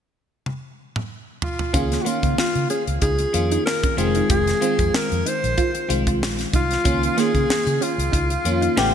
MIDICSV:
0, 0, Header, 1, 8, 480
1, 0, Start_track
1, 0, Key_signature, -5, "major"
1, 0, Tempo, 638978
1, 1307, Time_signature, 4, 2, 24, 8
1, 6719, End_track
2, 0, Start_track
2, 0, Title_t, "Alto saxophone"
2, 0, Program_c, 0, 65
2, 1074, Note_on_c, 0, 65, 73
2, 1324, Note_on_c, 0, 68, 75
2, 1335, Note_off_c, 0, 65, 0
2, 1514, Note_on_c, 0, 66, 60
2, 1526, Note_off_c, 0, 68, 0
2, 1558, Note_on_c, 0, 65, 70
2, 1569, Note_off_c, 0, 66, 0
2, 1793, Note_off_c, 0, 65, 0
2, 1796, Note_on_c, 0, 65, 76
2, 2016, Note_off_c, 0, 65, 0
2, 2027, Note_on_c, 0, 68, 77
2, 2135, Note_off_c, 0, 68, 0
2, 2267, Note_on_c, 0, 68, 96
2, 2718, Note_off_c, 0, 68, 0
2, 2746, Note_on_c, 0, 70, 93
2, 2985, Note_on_c, 0, 68, 87
2, 2996, Note_off_c, 0, 70, 0
2, 3227, Note_off_c, 0, 68, 0
2, 3232, Note_on_c, 0, 68, 98
2, 3717, Note_on_c, 0, 70, 97
2, 3728, Note_off_c, 0, 68, 0
2, 3965, Note_on_c, 0, 72, 99
2, 3977, Note_off_c, 0, 70, 0
2, 4438, Note_off_c, 0, 72, 0
2, 4923, Note_on_c, 0, 65, 106
2, 5405, Note_on_c, 0, 68, 109
2, 5416, Note_off_c, 0, 65, 0
2, 5879, Note_on_c, 0, 65, 90
2, 5890, Note_off_c, 0, 68, 0
2, 6719, Note_off_c, 0, 65, 0
2, 6719, End_track
3, 0, Start_track
3, 0, Title_t, "Clean electric guitar"
3, 0, Program_c, 1, 27
3, 1303, Note_on_c, 1, 61, 79
3, 1405, Note_off_c, 1, 61, 0
3, 1548, Note_on_c, 1, 58, 68
3, 1648, Note_off_c, 1, 58, 0
3, 2031, Note_on_c, 1, 61, 76
3, 2130, Note_off_c, 1, 61, 0
3, 2272, Note_on_c, 1, 63, 76
3, 2371, Note_off_c, 1, 63, 0
3, 2641, Note_on_c, 1, 63, 76
3, 2726, Note_off_c, 1, 63, 0
3, 2879, Note_on_c, 1, 61, 70
3, 2965, Note_off_c, 1, 61, 0
3, 3124, Note_on_c, 1, 63, 72
3, 3208, Note_off_c, 1, 63, 0
3, 3237, Note_on_c, 1, 65, 83
3, 3334, Note_off_c, 1, 65, 0
3, 3473, Note_on_c, 1, 60, 66
3, 3572, Note_off_c, 1, 60, 0
3, 3950, Note_on_c, 1, 63, 69
3, 4051, Note_off_c, 1, 63, 0
3, 4188, Note_on_c, 1, 65, 90
3, 4289, Note_off_c, 1, 65, 0
3, 4565, Note_on_c, 1, 65, 72
3, 4648, Note_off_c, 1, 65, 0
3, 4911, Note_on_c, 1, 63, 69
3, 5011, Note_off_c, 1, 63, 0
3, 5153, Note_on_c, 1, 61, 81
3, 5252, Note_off_c, 1, 61, 0
3, 5390, Note_on_c, 1, 58, 74
3, 5490, Note_off_c, 1, 58, 0
3, 5867, Note_on_c, 1, 61, 77
3, 5968, Note_off_c, 1, 61, 0
3, 6101, Note_on_c, 1, 63, 82
3, 6205, Note_off_c, 1, 63, 0
3, 6472, Note_on_c, 1, 63, 76
3, 6560, Note_off_c, 1, 63, 0
3, 6719, End_track
4, 0, Start_track
4, 0, Title_t, "FM electric piano"
4, 0, Program_c, 2, 5
4, 1300, Note_on_c, 2, 51, 61
4, 1304, Note_on_c, 2, 58, 55
4, 1304, Note_on_c, 2, 61, 62
4, 1307, Note_on_c, 2, 65, 77
4, 1434, Control_c, 2, 64, 127
4, 1474, Note_off_c, 2, 51, 0
4, 1476, Note_off_c, 2, 58, 0
4, 1476, Note_off_c, 2, 61, 0
4, 1477, Note_off_c, 2, 65, 0
4, 1537, Note_on_c, 2, 51, 62
4, 1540, Note_on_c, 2, 58, 57
4, 1542, Note_on_c, 2, 61, 54
4, 1547, Note_on_c, 2, 65, 71
4, 2204, Note_off_c, 2, 51, 0
4, 2205, Note_off_c, 2, 58, 0
4, 2206, Note_off_c, 2, 61, 0
4, 2209, Note_off_c, 2, 65, 0
4, 2501, Note_on_c, 2, 51, 59
4, 2503, Note_on_c, 2, 58, 50
4, 2506, Note_on_c, 2, 61, 53
4, 2509, Note_on_c, 2, 65, 67
4, 2972, Note_off_c, 2, 51, 0
4, 2981, Note_on_c, 2, 51, 67
4, 2982, Note_off_c, 2, 65, 0
4, 2983, Note_on_c, 2, 56, 64
4, 2986, Note_off_c, 2, 58, 0
4, 2987, Note_off_c, 2, 61, 0
4, 2989, Note_on_c, 2, 60, 65
4, 2991, Note_on_c, 2, 65, 76
4, 3000, Control_c, 2, 64, 0
4, 3124, Control_c, 2, 64, 127
4, 3377, Note_off_c, 2, 51, 0
4, 3378, Note_off_c, 2, 56, 0
4, 3381, Note_off_c, 2, 60, 0
4, 3382, Note_off_c, 2, 65, 0
4, 3459, Note_on_c, 2, 51, 61
4, 3462, Note_on_c, 2, 56, 57
4, 3465, Note_on_c, 2, 60, 54
4, 3466, Note_on_c, 2, 65, 66
4, 4125, Note_off_c, 2, 51, 0
4, 4127, Note_off_c, 2, 56, 0
4, 4128, Note_off_c, 2, 60, 0
4, 4129, Note_off_c, 2, 65, 0
4, 4419, Note_on_c, 2, 51, 63
4, 4423, Note_on_c, 2, 60, 49
4, 4424, Note_on_c, 2, 56, 55
4, 4427, Note_on_c, 2, 65, 64
4, 4917, Note_off_c, 2, 51, 0
4, 4919, Note_off_c, 2, 56, 0
4, 4919, Note_off_c, 2, 60, 0
4, 4921, Note_off_c, 2, 65, 0
4, 5137, Note_on_c, 2, 51, 69
4, 5144, Note_on_c, 2, 58, 64
4, 5145, Note_on_c, 2, 61, 65
4, 5149, Note_on_c, 2, 65, 78
4, 5158, Control_c, 2, 64, 0
4, 5312, Control_c, 2, 64, 127
4, 5313, Note_off_c, 2, 51, 0
4, 5317, Note_off_c, 2, 58, 0
4, 5317, Note_off_c, 2, 61, 0
4, 5319, Note_off_c, 2, 65, 0
4, 5378, Note_on_c, 2, 51, 66
4, 5385, Note_on_c, 2, 58, 57
4, 5390, Note_on_c, 2, 61, 53
4, 5393, Note_on_c, 2, 65, 69
4, 6045, Note_off_c, 2, 51, 0
4, 6048, Note_off_c, 2, 58, 0
4, 6050, Note_off_c, 2, 61, 0
4, 6052, Note_off_c, 2, 65, 0
4, 6346, Note_on_c, 2, 51, 59
4, 6350, Note_on_c, 2, 58, 51
4, 6352, Note_on_c, 2, 61, 52
4, 6353, Note_on_c, 2, 65, 63
4, 6583, Note_on_c, 2, 49, 86
4, 6586, Note_on_c, 2, 57, 85
4, 6587, Note_off_c, 2, 51, 0
4, 6589, Note_off_c, 2, 58, 0
4, 6589, Note_on_c, 2, 59, 85
4, 6590, Note_off_c, 2, 61, 0
4, 6591, Note_off_c, 2, 65, 0
4, 6596, Note_on_c, 2, 67, 100
4, 6597, Control_c, 2, 64, 0
4, 6719, Note_off_c, 2, 49, 0
4, 6719, Note_off_c, 2, 57, 0
4, 6719, Note_off_c, 2, 59, 0
4, 6719, Note_off_c, 2, 67, 0
4, 6719, End_track
5, 0, Start_track
5, 0, Title_t, "Fingered electric bass"
5, 0, Program_c, 3, 33
5, 1309, Note_on_c, 3, 37, 94
5, 1473, Note_off_c, 3, 37, 0
5, 1676, Note_on_c, 3, 49, 82
5, 1752, Note_off_c, 3, 49, 0
5, 1919, Note_on_c, 3, 49, 83
5, 1995, Note_off_c, 3, 49, 0
5, 2160, Note_on_c, 3, 37, 84
5, 2235, Note_off_c, 3, 37, 0
5, 2269, Note_on_c, 3, 37, 95
5, 2433, Note_off_c, 3, 37, 0
5, 2511, Note_on_c, 3, 41, 79
5, 2675, Note_off_c, 3, 41, 0
5, 2990, Note_on_c, 3, 29, 93
5, 3154, Note_off_c, 3, 29, 0
5, 3230, Note_on_c, 3, 29, 98
5, 3395, Note_off_c, 3, 29, 0
5, 3599, Note_on_c, 3, 41, 82
5, 3674, Note_off_c, 3, 41, 0
5, 3845, Note_on_c, 3, 41, 91
5, 3919, Note_off_c, 3, 41, 0
5, 4085, Note_on_c, 3, 34, 88
5, 4159, Note_off_c, 3, 34, 0
5, 4430, Note_on_c, 3, 36, 86
5, 4675, Note_off_c, 3, 36, 0
5, 4675, Note_on_c, 3, 34, 84
5, 4837, Note_off_c, 3, 34, 0
5, 4909, Note_on_c, 3, 36, 86
5, 5074, Note_off_c, 3, 36, 0
5, 5151, Note_on_c, 3, 37, 102
5, 5315, Note_off_c, 3, 37, 0
5, 5518, Note_on_c, 3, 49, 84
5, 5594, Note_off_c, 3, 49, 0
5, 5759, Note_on_c, 3, 49, 83
5, 5835, Note_off_c, 3, 49, 0
5, 5996, Note_on_c, 3, 37, 74
5, 6073, Note_off_c, 3, 37, 0
5, 6110, Note_on_c, 3, 37, 93
5, 6274, Note_off_c, 3, 37, 0
5, 6347, Note_on_c, 3, 41, 81
5, 6512, Note_off_c, 3, 41, 0
5, 6589, Note_on_c, 3, 33, 77
5, 6719, Note_off_c, 3, 33, 0
5, 6719, End_track
6, 0, Start_track
6, 0, Title_t, "Muted clean electric guitar strokes"
6, 1442, Note_on_c, 9, 29, 41
6, 1517, Note_off_c, 9, 29, 0
6, 2402, Note_on_c, 9, 29, 37
6, 2477, Note_off_c, 9, 29, 0
6, 2996, Note_on_c, 9, 29, 44
6, 3071, Note_off_c, 9, 29, 0
6, 3364, Note_on_c, 9, 29, 40
6, 3439, Note_off_c, 9, 29, 0
6, 4319, Note_on_c, 9, 29, 44
6, 4394, Note_off_c, 9, 29, 0
6, 5284, Note_on_c, 9, 29, 37
6, 5359, Note_off_c, 9, 29, 0
6, 6234, Note_on_c, 9, 29, 40
6, 6310, Note_off_c, 9, 29, 0
6, 6719, End_track
7, 0, Start_track
7, 0, Title_t, "Muted fingered electric bass strokes"
7, 1789, Note_on_c, 9, 29, 37
7, 1864, Note_off_c, 9, 29, 0
7, 3717, Note_on_c, 9, 29, 38
7, 3792, Note_off_c, 9, 29, 0
7, 5630, Note_on_c, 9, 29, 39
7, 5705, Note_off_c, 9, 29, 0
7, 6719, End_track
8, 0, Start_track
8, 0, Title_t, "Drums"
8, 348, Note_on_c, 9, 48, 45
8, 423, Note_off_c, 9, 48, 0
8, 721, Note_on_c, 9, 47, 57
8, 796, Note_off_c, 9, 47, 0
8, 1068, Note_on_c, 9, 43, 102
8, 1143, Note_off_c, 9, 43, 0
8, 1196, Note_on_c, 9, 43, 79
8, 1272, Note_off_c, 9, 43, 0
8, 1306, Note_on_c, 9, 42, 92
8, 1308, Note_on_c, 9, 36, 107
8, 1382, Note_off_c, 9, 42, 0
8, 1383, Note_off_c, 9, 36, 0
8, 1440, Note_on_c, 9, 42, 52
8, 1445, Note_on_c, 9, 38, 31
8, 1515, Note_off_c, 9, 42, 0
8, 1520, Note_off_c, 9, 38, 0
8, 1549, Note_on_c, 9, 42, 61
8, 1624, Note_off_c, 9, 42, 0
8, 1675, Note_on_c, 9, 42, 41
8, 1677, Note_on_c, 9, 36, 81
8, 1750, Note_off_c, 9, 42, 0
8, 1752, Note_off_c, 9, 36, 0
8, 1791, Note_on_c, 9, 38, 101
8, 1866, Note_off_c, 9, 38, 0
8, 1917, Note_on_c, 9, 42, 38
8, 1992, Note_off_c, 9, 42, 0
8, 2027, Note_on_c, 9, 42, 58
8, 2102, Note_off_c, 9, 42, 0
8, 2159, Note_on_c, 9, 42, 40
8, 2234, Note_off_c, 9, 42, 0
8, 2265, Note_on_c, 9, 42, 65
8, 2268, Note_on_c, 9, 36, 81
8, 2340, Note_off_c, 9, 42, 0
8, 2343, Note_off_c, 9, 36, 0
8, 2393, Note_on_c, 9, 42, 44
8, 2468, Note_off_c, 9, 42, 0
8, 2508, Note_on_c, 9, 42, 76
8, 2583, Note_off_c, 9, 42, 0
8, 2641, Note_on_c, 9, 42, 49
8, 2716, Note_off_c, 9, 42, 0
8, 2758, Note_on_c, 9, 38, 101
8, 2833, Note_off_c, 9, 38, 0
8, 2880, Note_on_c, 9, 42, 47
8, 2881, Note_on_c, 9, 36, 94
8, 2955, Note_off_c, 9, 42, 0
8, 2956, Note_off_c, 9, 36, 0
8, 2991, Note_on_c, 9, 42, 73
8, 3066, Note_off_c, 9, 42, 0
8, 3115, Note_on_c, 9, 42, 50
8, 3190, Note_off_c, 9, 42, 0
8, 3228, Note_on_c, 9, 42, 80
8, 3229, Note_on_c, 9, 36, 111
8, 3303, Note_off_c, 9, 42, 0
8, 3304, Note_off_c, 9, 36, 0
8, 3360, Note_on_c, 9, 42, 49
8, 3365, Note_on_c, 9, 38, 29
8, 3435, Note_off_c, 9, 42, 0
8, 3440, Note_off_c, 9, 38, 0
8, 3470, Note_on_c, 9, 42, 57
8, 3545, Note_off_c, 9, 42, 0
8, 3596, Note_on_c, 9, 42, 48
8, 3598, Note_on_c, 9, 36, 78
8, 3672, Note_off_c, 9, 42, 0
8, 3673, Note_off_c, 9, 36, 0
8, 3714, Note_on_c, 9, 38, 108
8, 3790, Note_off_c, 9, 38, 0
8, 3844, Note_on_c, 9, 42, 40
8, 3919, Note_off_c, 9, 42, 0
8, 3955, Note_on_c, 9, 42, 67
8, 4030, Note_off_c, 9, 42, 0
8, 4086, Note_on_c, 9, 42, 45
8, 4161, Note_off_c, 9, 42, 0
8, 4189, Note_on_c, 9, 42, 66
8, 4191, Note_on_c, 9, 36, 69
8, 4264, Note_off_c, 9, 42, 0
8, 4266, Note_off_c, 9, 36, 0
8, 4317, Note_on_c, 9, 42, 47
8, 4392, Note_off_c, 9, 42, 0
8, 4432, Note_on_c, 9, 42, 72
8, 4507, Note_off_c, 9, 42, 0
8, 4559, Note_on_c, 9, 36, 88
8, 4561, Note_on_c, 9, 42, 50
8, 4634, Note_off_c, 9, 36, 0
8, 4636, Note_off_c, 9, 42, 0
8, 4680, Note_on_c, 9, 38, 107
8, 4755, Note_off_c, 9, 38, 0
8, 4797, Note_on_c, 9, 42, 52
8, 4805, Note_on_c, 9, 38, 34
8, 4872, Note_off_c, 9, 42, 0
8, 4880, Note_off_c, 9, 38, 0
8, 4909, Note_on_c, 9, 36, 99
8, 4911, Note_on_c, 9, 42, 68
8, 4984, Note_off_c, 9, 36, 0
8, 4986, Note_off_c, 9, 42, 0
8, 5038, Note_on_c, 9, 42, 49
8, 5049, Note_on_c, 9, 38, 29
8, 5113, Note_off_c, 9, 42, 0
8, 5124, Note_off_c, 9, 38, 0
8, 5147, Note_on_c, 9, 42, 95
8, 5149, Note_on_c, 9, 36, 110
8, 5222, Note_off_c, 9, 42, 0
8, 5224, Note_off_c, 9, 36, 0
8, 5283, Note_on_c, 9, 42, 52
8, 5358, Note_off_c, 9, 42, 0
8, 5392, Note_on_c, 9, 42, 62
8, 5396, Note_on_c, 9, 38, 33
8, 5467, Note_off_c, 9, 42, 0
8, 5471, Note_off_c, 9, 38, 0
8, 5518, Note_on_c, 9, 36, 78
8, 5520, Note_on_c, 9, 42, 47
8, 5594, Note_off_c, 9, 36, 0
8, 5595, Note_off_c, 9, 42, 0
8, 5636, Note_on_c, 9, 38, 109
8, 5711, Note_off_c, 9, 38, 0
8, 5760, Note_on_c, 9, 42, 41
8, 5835, Note_off_c, 9, 42, 0
8, 5874, Note_on_c, 9, 42, 65
8, 5949, Note_off_c, 9, 42, 0
8, 6006, Note_on_c, 9, 42, 43
8, 6081, Note_off_c, 9, 42, 0
8, 6110, Note_on_c, 9, 36, 76
8, 6111, Note_on_c, 9, 42, 65
8, 6185, Note_off_c, 9, 36, 0
8, 6187, Note_off_c, 9, 42, 0
8, 6237, Note_on_c, 9, 42, 47
8, 6312, Note_off_c, 9, 42, 0
8, 6349, Note_on_c, 9, 42, 66
8, 6424, Note_off_c, 9, 42, 0
8, 6478, Note_on_c, 9, 42, 46
8, 6553, Note_off_c, 9, 42, 0
8, 6592, Note_on_c, 9, 38, 107
8, 6667, Note_off_c, 9, 38, 0
8, 6719, End_track
0, 0, End_of_file